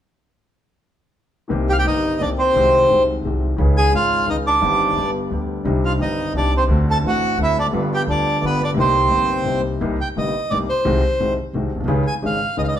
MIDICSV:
0, 0, Header, 1, 4, 480
1, 0, Start_track
1, 0, Key_signature, -3, "minor"
1, 0, Tempo, 345821
1, 2090, Time_signature, 3, 2, 24, 8
1, 17759, End_track
2, 0, Start_track
2, 0, Title_t, "Bandoneon"
2, 0, Program_c, 0, 23
2, 2349, Note_on_c, 0, 67, 64
2, 2356, Note_on_c, 0, 79, 84
2, 2396, Note_off_c, 0, 67, 0
2, 2396, Note_on_c, 0, 77, 68
2, 2400, Note_off_c, 0, 79, 0
2, 2453, Note_off_c, 0, 77, 0
2, 2476, Note_on_c, 0, 67, 63
2, 2485, Note_on_c, 0, 79, 81
2, 2576, Note_off_c, 0, 67, 0
2, 2581, Note_off_c, 0, 79, 0
2, 2596, Note_on_c, 0, 63, 52
2, 2600, Note_on_c, 0, 75, 67
2, 3031, Note_off_c, 0, 63, 0
2, 3070, Note_on_c, 0, 62, 52
2, 3080, Note_off_c, 0, 75, 0
2, 3091, Note_on_c, 0, 74, 72
2, 3174, Note_off_c, 0, 62, 0
2, 3190, Note_off_c, 0, 74, 0
2, 3307, Note_on_c, 0, 60, 55
2, 3326, Note_on_c, 0, 72, 71
2, 4200, Note_off_c, 0, 60, 0
2, 4209, Note_off_c, 0, 72, 0
2, 5234, Note_on_c, 0, 80, 94
2, 5245, Note_on_c, 0, 68, 69
2, 5448, Note_off_c, 0, 68, 0
2, 5465, Note_off_c, 0, 80, 0
2, 5488, Note_on_c, 0, 77, 78
2, 5492, Note_on_c, 0, 65, 59
2, 5914, Note_off_c, 0, 65, 0
2, 5958, Note_off_c, 0, 77, 0
2, 5960, Note_on_c, 0, 63, 58
2, 5964, Note_on_c, 0, 75, 78
2, 6059, Note_off_c, 0, 63, 0
2, 6062, Note_off_c, 0, 75, 0
2, 6200, Note_on_c, 0, 74, 71
2, 6205, Note_on_c, 0, 62, 55
2, 7086, Note_off_c, 0, 74, 0
2, 7089, Note_off_c, 0, 62, 0
2, 8120, Note_on_c, 0, 65, 55
2, 8125, Note_on_c, 0, 77, 73
2, 8221, Note_off_c, 0, 65, 0
2, 8225, Note_off_c, 0, 77, 0
2, 8347, Note_on_c, 0, 63, 54
2, 8349, Note_on_c, 0, 75, 65
2, 8786, Note_off_c, 0, 63, 0
2, 8787, Note_off_c, 0, 75, 0
2, 8840, Note_on_c, 0, 62, 59
2, 8844, Note_on_c, 0, 74, 74
2, 9050, Note_off_c, 0, 62, 0
2, 9074, Note_off_c, 0, 74, 0
2, 9112, Note_on_c, 0, 60, 54
2, 9125, Note_on_c, 0, 72, 70
2, 9206, Note_off_c, 0, 60, 0
2, 9217, Note_off_c, 0, 72, 0
2, 9582, Note_on_c, 0, 69, 70
2, 9595, Note_on_c, 0, 81, 82
2, 9678, Note_off_c, 0, 69, 0
2, 9689, Note_off_c, 0, 81, 0
2, 9814, Note_on_c, 0, 66, 58
2, 9843, Note_on_c, 0, 78, 73
2, 10240, Note_off_c, 0, 66, 0
2, 10256, Note_off_c, 0, 78, 0
2, 10304, Note_on_c, 0, 64, 62
2, 10332, Note_on_c, 0, 76, 78
2, 10502, Note_off_c, 0, 64, 0
2, 10517, Note_off_c, 0, 76, 0
2, 10528, Note_on_c, 0, 62, 59
2, 10555, Note_on_c, 0, 74, 78
2, 10627, Note_off_c, 0, 62, 0
2, 10648, Note_off_c, 0, 74, 0
2, 11018, Note_on_c, 0, 67, 64
2, 11047, Note_on_c, 0, 79, 81
2, 11115, Note_off_c, 0, 67, 0
2, 11138, Note_off_c, 0, 79, 0
2, 11236, Note_on_c, 0, 62, 56
2, 11255, Note_on_c, 0, 74, 71
2, 11670, Note_off_c, 0, 62, 0
2, 11726, Note_off_c, 0, 74, 0
2, 11732, Note_on_c, 0, 59, 58
2, 11750, Note_on_c, 0, 71, 70
2, 11935, Note_off_c, 0, 59, 0
2, 11966, Note_off_c, 0, 71, 0
2, 11975, Note_on_c, 0, 62, 57
2, 11998, Note_on_c, 0, 74, 78
2, 12072, Note_off_c, 0, 62, 0
2, 12090, Note_off_c, 0, 74, 0
2, 12206, Note_on_c, 0, 60, 54
2, 12221, Note_on_c, 0, 72, 71
2, 13334, Note_off_c, 0, 60, 0
2, 13342, Note_off_c, 0, 72, 0
2, 13894, Note_on_c, 0, 79, 73
2, 13994, Note_off_c, 0, 79, 0
2, 14131, Note_on_c, 0, 75, 66
2, 14580, Note_on_c, 0, 74, 69
2, 14609, Note_off_c, 0, 75, 0
2, 14687, Note_off_c, 0, 74, 0
2, 14841, Note_on_c, 0, 72, 63
2, 15733, Note_off_c, 0, 72, 0
2, 16755, Note_on_c, 0, 80, 73
2, 16858, Note_off_c, 0, 80, 0
2, 17015, Note_on_c, 0, 77, 72
2, 17440, Note_off_c, 0, 77, 0
2, 17466, Note_on_c, 0, 75, 69
2, 17514, Note_off_c, 0, 75, 0
2, 17541, Note_on_c, 0, 77, 56
2, 17585, Note_off_c, 0, 77, 0
2, 17599, Note_on_c, 0, 75, 65
2, 17697, Note_off_c, 0, 75, 0
2, 17710, Note_on_c, 0, 74, 65
2, 17759, Note_off_c, 0, 74, 0
2, 17759, End_track
3, 0, Start_track
3, 0, Title_t, "Grand piano"
3, 0, Program_c, 1, 0
3, 2051, Note_on_c, 1, 51, 43
3, 2065, Note_on_c, 1, 58, 41
3, 2075, Note_on_c, 1, 36, 56
3, 2075, Note_on_c, 1, 48, 53
3, 2080, Note_on_c, 1, 60, 41
3, 2105, Note_on_c, 1, 67, 49
3, 2525, Note_off_c, 1, 51, 0
3, 2534, Note_off_c, 1, 58, 0
3, 2539, Note_off_c, 1, 36, 0
3, 2539, Note_off_c, 1, 48, 0
3, 2542, Note_off_c, 1, 60, 0
3, 2546, Note_on_c, 1, 51, 30
3, 2554, Note_off_c, 1, 67, 0
3, 2560, Note_on_c, 1, 58, 25
3, 2568, Note_on_c, 1, 43, 33
3, 2576, Note_on_c, 1, 31, 32
3, 2576, Note_on_c, 1, 60, 26
3, 2602, Note_on_c, 1, 67, 32
3, 3008, Note_off_c, 1, 51, 0
3, 3022, Note_off_c, 1, 58, 0
3, 3026, Note_off_c, 1, 43, 0
3, 3029, Note_on_c, 1, 51, 31
3, 3030, Note_off_c, 1, 31, 0
3, 3030, Note_off_c, 1, 60, 0
3, 3043, Note_off_c, 1, 67, 0
3, 3051, Note_on_c, 1, 58, 29
3, 3064, Note_on_c, 1, 36, 35
3, 3066, Note_on_c, 1, 48, 36
3, 3070, Note_on_c, 1, 60, 28
3, 3086, Note_on_c, 1, 67, 31
3, 3495, Note_off_c, 1, 51, 0
3, 3506, Note_off_c, 1, 58, 0
3, 3512, Note_off_c, 1, 36, 0
3, 3514, Note_off_c, 1, 48, 0
3, 3515, Note_off_c, 1, 60, 0
3, 3523, Note_off_c, 1, 67, 0
3, 3531, Note_on_c, 1, 51, 49
3, 3541, Note_on_c, 1, 56, 42
3, 3549, Note_on_c, 1, 48, 55
3, 3553, Note_on_c, 1, 36, 52
3, 3567, Note_on_c, 1, 60, 43
3, 3577, Note_on_c, 1, 66, 51
3, 3978, Note_off_c, 1, 51, 0
3, 3990, Note_off_c, 1, 56, 0
3, 3994, Note_off_c, 1, 48, 0
3, 3996, Note_off_c, 1, 36, 0
3, 3999, Note_on_c, 1, 51, 30
3, 4003, Note_off_c, 1, 60, 0
3, 4008, Note_off_c, 1, 66, 0
3, 4026, Note_on_c, 1, 56, 28
3, 4028, Note_on_c, 1, 36, 35
3, 4032, Note_on_c, 1, 48, 34
3, 4043, Note_on_c, 1, 60, 26
3, 4056, Note_on_c, 1, 66, 34
3, 4457, Note_off_c, 1, 51, 0
3, 4471, Note_off_c, 1, 56, 0
3, 4472, Note_off_c, 1, 36, 0
3, 4474, Note_off_c, 1, 48, 0
3, 4479, Note_off_c, 1, 60, 0
3, 4486, Note_off_c, 1, 66, 0
3, 4489, Note_on_c, 1, 51, 30
3, 4505, Note_on_c, 1, 56, 28
3, 4512, Note_on_c, 1, 36, 36
3, 4516, Note_on_c, 1, 48, 37
3, 4524, Note_on_c, 1, 60, 29
3, 4539, Note_on_c, 1, 66, 33
3, 4927, Note_off_c, 1, 51, 0
3, 4941, Note_off_c, 1, 56, 0
3, 4948, Note_on_c, 1, 51, 49
3, 4953, Note_off_c, 1, 36, 0
3, 4955, Note_off_c, 1, 48, 0
3, 4959, Note_off_c, 1, 60, 0
3, 4962, Note_on_c, 1, 56, 43
3, 4967, Note_off_c, 1, 66, 0
3, 4971, Note_on_c, 1, 49, 56
3, 4981, Note_on_c, 1, 37, 58
3, 4982, Note_on_c, 1, 61, 46
3, 5005, Note_on_c, 1, 68, 54
3, 5405, Note_off_c, 1, 51, 0
3, 5418, Note_off_c, 1, 56, 0
3, 5422, Note_off_c, 1, 49, 0
3, 5426, Note_on_c, 1, 51, 33
3, 5427, Note_off_c, 1, 37, 0
3, 5428, Note_off_c, 1, 61, 0
3, 5439, Note_off_c, 1, 68, 0
3, 5441, Note_on_c, 1, 56, 28
3, 5454, Note_on_c, 1, 32, 38
3, 5457, Note_on_c, 1, 44, 36
3, 5462, Note_on_c, 1, 61, 29
3, 5484, Note_on_c, 1, 68, 36
3, 5884, Note_off_c, 1, 51, 0
3, 5897, Note_off_c, 1, 56, 0
3, 5903, Note_off_c, 1, 32, 0
3, 5904, Note_on_c, 1, 51, 31
3, 5905, Note_off_c, 1, 44, 0
3, 5907, Note_off_c, 1, 61, 0
3, 5918, Note_off_c, 1, 68, 0
3, 5930, Note_on_c, 1, 56, 30
3, 5932, Note_on_c, 1, 37, 37
3, 5934, Note_on_c, 1, 49, 37
3, 5948, Note_on_c, 1, 61, 28
3, 5962, Note_on_c, 1, 68, 35
3, 6363, Note_off_c, 1, 51, 0
3, 6381, Note_off_c, 1, 56, 0
3, 6382, Note_off_c, 1, 37, 0
3, 6383, Note_off_c, 1, 49, 0
3, 6384, Note_on_c, 1, 51, 45
3, 6390, Note_off_c, 1, 61, 0
3, 6397, Note_off_c, 1, 68, 0
3, 6409, Note_on_c, 1, 55, 43
3, 6410, Note_on_c, 1, 31, 57
3, 6410, Note_on_c, 1, 43, 58
3, 6418, Note_on_c, 1, 60, 45
3, 6438, Note_on_c, 1, 67, 53
3, 6849, Note_off_c, 1, 51, 0
3, 6856, Note_off_c, 1, 55, 0
3, 6862, Note_off_c, 1, 31, 0
3, 6862, Note_off_c, 1, 43, 0
3, 6863, Note_on_c, 1, 50, 30
3, 6866, Note_off_c, 1, 60, 0
3, 6876, Note_off_c, 1, 67, 0
3, 6877, Note_on_c, 1, 55, 28
3, 6885, Note_on_c, 1, 43, 37
3, 6889, Note_on_c, 1, 31, 36
3, 6899, Note_on_c, 1, 59, 27
3, 6911, Note_on_c, 1, 67, 33
3, 7323, Note_off_c, 1, 50, 0
3, 7337, Note_off_c, 1, 55, 0
3, 7341, Note_off_c, 1, 43, 0
3, 7343, Note_off_c, 1, 31, 0
3, 7343, Note_on_c, 1, 50, 36
3, 7348, Note_off_c, 1, 59, 0
3, 7354, Note_off_c, 1, 67, 0
3, 7358, Note_on_c, 1, 55, 28
3, 7366, Note_on_c, 1, 38, 34
3, 7373, Note_on_c, 1, 59, 29
3, 7398, Note_on_c, 1, 67, 33
3, 7812, Note_off_c, 1, 55, 0
3, 7820, Note_on_c, 1, 62, 45
3, 7823, Note_off_c, 1, 38, 0
3, 7824, Note_off_c, 1, 50, 0
3, 7826, Note_off_c, 1, 59, 0
3, 7833, Note_on_c, 1, 55, 42
3, 7839, Note_off_c, 1, 67, 0
3, 7845, Note_on_c, 1, 36, 52
3, 7845, Note_on_c, 1, 48, 56
3, 7854, Note_on_c, 1, 60, 41
3, 7866, Note_on_c, 1, 63, 47
3, 8291, Note_off_c, 1, 62, 0
3, 8297, Note_off_c, 1, 55, 0
3, 8297, Note_on_c, 1, 51, 30
3, 8303, Note_off_c, 1, 36, 0
3, 8304, Note_off_c, 1, 48, 0
3, 8308, Note_off_c, 1, 60, 0
3, 8314, Note_off_c, 1, 63, 0
3, 8318, Note_on_c, 1, 55, 27
3, 8325, Note_on_c, 1, 31, 34
3, 8334, Note_on_c, 1, 43, 33
3, 8337, Note_on_c, 1, 60, 29
3, 8360, Note_on_c, 1, 63, 32
3, 8770, Note_off_c, 1, 51, 0
3, 8781, Note_off_c, 1, 55, 0
3, 8784, Note_off_c, 1, 31, 0
3, 8789, Note_off_c, 1, 43, 0
3, 8790, Note_off_c, 1, 60, 0
3, 8791, Note_on_c, 1, 62, 31
3, 8801, Note_off_c, 1, 63, 0
3, 8809, Note_on_c, 1, 55, 28
3, 8819, Note_on_c, 1, 36, 36
3, 8820, Note_on_c, 1, 48, 34
3, 8831, Note_on_c, 1, 60, 28
3, 8850, Note_on_c, 1, 63, 35
3, 9258, Note_off_c, 1, 62, 0
3, 9262, Note_on_c, 1, 50, 57
3, 9267, Note_off_c, 1, 55, 0
3, 9270, Note_off_c, 1, 60, 0
3, 9272, Note_off_c, 1, 36, 0
3, 9272, Note_off_c, 1, 48, 0
3, 9280, Note_on_c, 1, 57, 42
3, 9287, Note_on_c, 1, 38, 57
3, 9288, Note_off_c, 1, 63, 0
3, 9291, Note_on_c, 1, 60, 44
3, 9318, Note_on_c, 1, 66, 54
3, 9727, Note_off_c, 1, 50, 0
3, 9742, Note_off_c, 1, 57, 0
3, 9746, Note_off_c, 1, 38, 0
3, 9747, Note_off_c, 1, 60, 0
3, 9748, Note_on_c, 1, 50, 31
3, 9761, Note_off_c, 1, 66, 0
3, 9770, Note_on_c, 1, 57, 28
3, 9774, Note_on_c, 1, 33, 36
3, 9780, Note_on_c, 1, 45, 37
3, 9790, Note_on_c, 1, 60, 27
3, 9809, Note_on_c, 1, 66, 34
3, 10207, Note_off_c, 1, 50, 0
3, 10224, Note_off_c, 1, 57, 0
3, 10228, Note_off_c, 1, 33, 0
3, 10228, Note_on_c, 1, 50, 39
3, 10231, Note_off_c, 1, 45, 0
3, 10236, Note_off_c, 1, 60, 0
3, 10245, Note_on_c, 1, 57, 29
3, 10246, Note_off_c, 1, 66, 0
3, 10253, Note_on_c, 1, 38, 37
3, 10260, Note_on_c, 1, 60, 30
3, 10282, Note_on_c, 1, 66, 36
3, 10674, Note_off_c, 1, 50, 0
3, 10694, Note_on_c, 1, 50, 49
3, 10703, Note_off_c, 1, 57, 0
3, 10707, Note_off_c, 1, 38, 0
3, 10710, Note_off_c, 1, 60, 0
3, 10716, Note_on_c, 1, 55, 45
3, 10721, Note_off_c, 1, 66, 0
3, 10726, Note_on_c, 1, 31, 56
3, 10727, Note_on_c, 1, 43, 57
3, 10737, Note_on_c, 1, 59, 48
3, 10748, Note_on_c, 1, 65, 56
3, 11155, Note_off_c, 1, 50, 0
3, 11175, Note_off_c, 1, 55, 0
3, 11175, Note_on_c, 1, 50, 33
3, 11183, Note_off_c, 1, 31, 0
3, 11184, Note_off_c, 1, 43, 0
3, 11188, Note_off_c, 1, 59, 0
3, 11194, Note_off_c, 1, 65, 0
3, 11196, Note_off_c, 1, 50, 0
3, 11196, Note_on_c, 1, 55, 30
3, 11203, Note_on_c, 1, 38, 36
3, 11205, Note_on_c, 1, 50, 36
3, 11211, Note_on_c, 1, 59, 29
3, 11224, Note_on_c, 1, 65, 35
3, 11636, Note_off_c, 1, 50, 0
3, 11653, Note_off_c, 1, 55, 0
3, 11657, Note_on_c, 1, 50, 33
3, 11662, Note_off_c, 1, 38, 0
3, 11666, Note_off_c, 1, 59, 0
3, 11673, Note_off_c, 1, 65, 0
3, 11674, Note_on_c, 1, 55, 32
3, 11679, Note_on_c, 1, 43, 39
3, 11688, Note_on_c, 1, 31, 40
3, 11692, Note_on_c, 1, 59, 30
3, 11717, Note_on_c, 1, 65, 36
3, 12123, Note_off_c, 1, 55, 0
3, 12128, Note_off_c, 1, 50, 0
3, 12132, Note_on_c, 1, 48, 58
3, 12140, Note_off_c, 1, 43, 0
3, 12144, Note_off_c, 1, 31, 0
3, 12144, Note_on_c, 1, 55, 46
3, 12146, Note_off_c, 1, 59, 0
3, 12154, Note_on_c, 1, 36, 54
3, 12158, Note_off_c, 1, 65, 0
3, 12167, Note_on_c, 1, 58, 47
3, 12187, Note_on_c, 1, 63, 59
3, 12592, Note_off_c, 1, 48, 0
3, 12607, Note_off_c, 1, 55, 0
3, 12613, Note_on_c, 1, 48, 30
3, 12617, Note_off_c, 1, 36, 0
3, 12623, Note_off_c, 1, 58, 0
3, 12628, Note_on_c, 1, 55, 29
3, 12633, Note_off_c, 1, 63, 0
3, 12645, Note_on_c, 1, 43, 36
3, 12646, Note_on_c, 1, 31, 34
3, 12649, Note_on_c, 1, 58, 29
3, 12669, Note_on_c, 1, 63, 36
3, 13067, Note_off_c, 1, 48, 0
3, 13088, Note_off_c, 1, 55, 0
3, 13088, Note_on_c, 1, 48, 29
3, 13104, Note_off_c, 1, 43, 0
3, 13105, Note_off_c, 1, 31, 0
3, 13106, Note_off_c, 1, 58, 0
3, 13108, Note_off_c, 1, 48, 0
3, 13109, Note_on_c, 1, 55, 28
3, 13116, Note_off_c, 1, 63, 0
3, 13117, Note_on_c, 1, 48, 36
3, 13119, Note_on_c, 1, 36, 34
3, 13130, Note_on_c, 1, 58, 29
3, 13157, Note_on_c, 1, 63, 34
3, 13577, Note_off_c, 1, 55, 0
3, 13582, Note_off_c, 1, 48, 0
3, 13583, Note_off_c, 1, 36, 0
3, 13588, Note_off_c, 1, 58, 0
3, 13595, Note_off_c, 1, 63, 0
3, 13612, Note_on_c, 1, 48, 59
3, 13614, Note_on_c, 1, 58, 46
3, 13616, Note_on_c, 1, 63, 55
3, 13619, Note_on_c, 1, 55, 46
3, 13622, Note_on_c, 1, 36, 59
3, 13816, Note_off_c, 1, 48, 0
3, 13816, Note_off_c, 1, 58, 0
3, 13817, Note_off_c, 1, 63, 0
3, 13819, Note_off_c, 1, 55, 0
3, 13820, Note_off_c, 1, 36, 0
3, 14107, Note_on_c, 1, 48, 34
3, 14108, Note_on_c, 1, 55, 30
3, 14111, Note_on_c, 1, 31, 40
3, 14112, Note_on_c, 1, 43, 37
3, 14112, Note_on_c, 1, 58, 31
3, 14113, Note_on_c, 1, 63, 35
3, 14304, Note_off_c, 1, 48, 0
3, 14304, Note_off_c, 1, 55, 0
3, 14306, Note_off_c, 1, 31, 0
3, 14306, Note_off_c, 1, 43, 0
3, 14307, Note_off_c, 1, 58, 0
3, 14307, Note_off_c, 1, 63, 0
3, 14584, Note_on_c, 1, 48, 42
3, 14588, Note_on_c, 1, 58, 30
3, 14590, Note_on_c, 1, 36, 41
3, 14591, Note_on_c, 1, 55, 31
3, 14592, Note_on_c, 1, 63, 37
3, 14784, Note_off_c, 1, 58, 0
3, 14785, Note_off_c, 1, 36, 0
3, 14785, Note_off_c, 1, 55, 0
3, 14786, Note_off_c, 1, 63, 0
3, 14787, Note_off_c, 1, 48, 0
3, 15052, Note_on_c, 1, 60, 49
3, 15054, Note_on_c, 1, 51, 57
3, 15055, Note_on_c, 1, 66, 58
3, 15057, Note_on_c, 1, 36, 64
3, 15059, Note_on_c, 1, 48, 59
3, 15061, Note_on_c, 1, 56, 52
3, 15256, Note_off_c, 1, 60, 0
3, 15257, Note_off_c, 1, 51, 0
3, 15258, Note_off_c, 1, 66, 0
3, 15259, Note_off_c, 1, 36, 0
3, 15260, Note_off_c, 1, 48, 0
3, 15261, Note_off_c, 1, 56, 0
3, 15543, Note_on_c, 1, 56, 31
3, 15545, Note_on_c, 1, 36, 40
3, 15546, Note_on_c, 1, 60, 31
3, 15550, Note_on_c, 1, 48, 41
3, 15551, Note_on_c, 1, 51, 35
3, 15552, Note_on_c, 1, 66, 35
3, 15742, Note_off_c, 1, 36, 0
3, 15742, Note_off_c, 1, 56, 0
3, 15743, Note_off_c, 1, 60, 0
3, 15745, Note_off_c, 1, 48, 0
3, 15745, Note_off_c, 1, 51, 0
3, 15746, Note_off_c, 1, 66, 0
3, 16019, Note_on_c, 1, 51, 35
3, 16024, Note_on_c, 1, 36, 42
3, 16029, Note_on_c, 1, 48, 40
3, 16030, Note_on_c, 1, 56, 32
3, 16033, Note_on_c, 1, 60, 33
3, 16033, Note_on_c, 1, 66, 38
3, 16218, Note_off_c, 1, 51, 0
3, 16221, Note_off_c, 1, 36, 0
3, 16224, Note_off_c, 1, 48, 0
3, 16224, Note_off_c, 1, 56, 0
3, 16226, Note_off_c, 1, 60, 0
3, 16226, Note_off_c, 1, 66, 0
3, 16324, Note_on_c, 1, 34, 38
3, 16377, Note_on_c, 1, 35, 45
3, 16379, Note_off_c, 1, 34, 0
3, 16436, Note_off_c, 1, 35, 0
3, 16449, Note_on_c, 1, 36, 54
3, 16481, Note_on_c, 1, 51, 54
3, 16487, Note_on_c, 1, 49, 69
3, 16491, Note_on_c, 1, 37, 63
3, 16492, Note_on_c, 1, 68, 61
3, 16493, Note_on_c, 1, 56, 48
3, 16493, Note_on_c, 1, 61, 51
3, 16501, Note_off_c, 1, 36, 0
3, 16688, Note_off_c, 1, 51, 0
3, 16691, Note_off_c, 1, 49, 0
3, 16693, Note_off_c, 1, 37, 0
3, 16694, Note_off_c, 1, 56, 0
3, 16694, Note_off_c, 1, 61, 0
3, 16694, Note_off_c, 1, 68, 0
3, 16966, Note_on_c, 1, 51, 34
3, 16967, Note_on_c, 1, 44, 42
3, 16970, Note_on_c, 1, 32, 43
3, 16971, Note_on_c, 1, 56, 31
3, 16974, Note_on_c, 1, 61, 31
3, 16976, Note_on_c, 1, 68, 38
3, 17170, Note_off_c, 1, 44, 0
3, 17170, Note_off_c, 1, 51, 0
3, 17172, Note_off_c, 1, 32, 0
3, 17172, Note_off_c, 1, 56, 0
3, 17174, Note_off_c, 1, 61, 0
3, 17175, Note_off_c, 1, 68, 0
3, 17443, Note_on_c, 1, 51, 37
3, 17446, Note_on_c, 1, 56, 34
3, 17449, Note_on_c, 1, 61, 30
3, 17451, Note_on_c, 1, 49, 44
3, 17453, Note_on_c, 1, 37, 42
3, 17457, Note_on_c, 1, 68, 37
3, 17647, Note_off_c, 1, 51, 0
3, 17649, Note_off_c, 1, 56, 0
3, 17650, Note_off_c, 1, 61, 0
3, 17651, Note_off_c, 1, 49, 0
3, 17652, Note_off_c, 1, 37, 0
3, 17654, Note_off_c, 1, 68, 0
3, 17759, End_track
4, 0, Start_track
4, 0, Title_t, "Upright bass"
4, 0, Program_c, 2, 32
4, 2093, Note_on_c, 2, 36, 57
4, 2549, Note_off_c, 2, 36, 0
4, 2570, Note_on_c, 2, 31, 40
4, 3027, Note_off_c, 2, 31, 0
4, 3073, Note_on_c, 2, 36, 45
4, 3517, Note_off_c, 2, 36, 0
4, 3544, Note_on_c, 2, 36, 57
4, 3991, Note_off_c, 2, 36, 0
4, 4020, Note_on_c, 2, 36, 42
4, 4468, Note_off_c, 2, 36, 0
4, 4480, Note_on_c, 2, 36, 44
4, 4937, Note_off_c, 2, 36, 0
4, 4971, Note_on_c, 2, 37, 61
4, 5422, Note_off_c, 2, 37, 0
4, 5453, Note_on_c, 2, 32, 43
4, 5903, Note_off_c, 2, 32, 0
4, 5931, Note_on_c, 2, 37, 47
4, 6382, Note_off_c, 2, 37, 0
4, 6412, Note_on_c, 2, 31, 60
4, 6863, Note_off_c, 2, 31, 0
4, 6885, Note_on_c, 2, 31, 41
4, 7341, Note_off_c, 2, 31, 0
4, 7367, Note_on_c, 2, 38, 42
4, 7824, Note_off_c, 2, 38, 0
4, 7846, Note_on_c, 2, 36, 61
4, 8304, Note_off_c, 2, 36, 0
4, 8323, Note_on_c, 2, 31, 41
4, 8783, Note_off_c, 2, 31, 0
4, 8797, Note_on_c, 2, 36, 45
4, 9261, Note_off_c, 2, 36, 0
4, 9279, Note_on_c, 2, 38, 58
4, 9742, Note_off_c, 2, 38, 0
4, 9755, Note_on_c, 2, 33, 39
4, 10219, Note_off_c, 2, 33, 0
4, 10234, Note_on_c, 2, 38, 45
4, 10697, Note_off_c, 2, 38, 0
4, 10724, Note_on_c, 2, 31, 61
4, 11182, Note_off_c, 2, 31, 0
4, 11200, Note_on_c, 2, 38, 42
4, 11660, Note_off_c, 2, 38, 0
4, 11695, Note_on_c, 2, 31, 48
4, 12147, Note_off_c, 2, 31, 0
4, 12176, Note_on_c, 2, 36, 63
4, 12628, Note_off_c, 2, 36, 0
4, 12655, Note_on_c, 2, 31, 42
4, 13109, Note_off_c, 2, 31, 0
4, 13143, Note_on_c, 2, 36, 43
4, 13595, Note_off_c, 2, 36, 0
4, 13619, Note_on_c, 2, 36, 65
4, 13819, Note_off_c, 2, 36, 0
4, 14101, Note_on_c, 2, 31, 44
4, 14301, Note_off_c, 2, 31, 0
4, 14590, Note_on_c, 2, 36, 49
4, 14785, Note_off_c, 2, 36, 0
4, 15071, Note_on_c, 2, 36, 67
4, 15266, Note_off_c, 2, 36, 0
4, 15546, Note_on_c, 2, 36, 47
4, 15743, Note_off_c, 2, 36, 0
4, 16010, Note_on_c, 2, 36, 51
4, 16214, Note_off_c, 2, 36, 0
4, 16309, Note_on_c, 2, 34, 38
4, 16372, Note_off_c, 2, 34, 0
4, 16382, Note_on_c, 2, 35, 48
4, 16425, Note_off_c, 2, 35, 0
4, 16434, Note_on_c, 2, 36, 56
4, 16477, Note_off_c, 2, 36, 0
4, 16486, Note_on_c, 2, 37, 69
4, 16691, Note_off_c, 2, 37, 0
4, 16965, Note_on_c, 2, 32, 49
4, 17169, Note_off_c, 2, 32, 0
4, 17448, Note_on_c, 2, 37, 51
4, 17649, Note_off_c, 2, 37, 0
4, 17759, End_track
0, 0, End_of_file